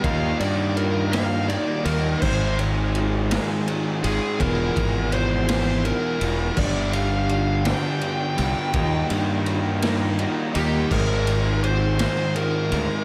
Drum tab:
CC |------|x-----|------|x-----|
RD |xxxxxx|-xxxxx|xxxxxx|-xxxxx|
SD |---o--|---o--|---o--|---o--|
BD |o-----|o-----|oo----|o-----|

CC |------|x-----|
RD |xxxxxx|-xxxxx|
SD |---o--|---o--|
BD |o-----|o-----|